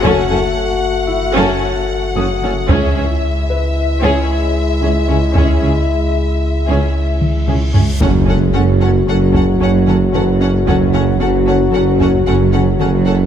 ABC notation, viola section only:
X:1
M:5/4
L:1/8
Q:1/4=113
K:F#dor
V:1 name="Viola section"
C C z3 C z2 C C | C C z3 C z2 C C | C C z3 C z2 C C | C C C C C C C C C C |
C C C C C C C C C C |]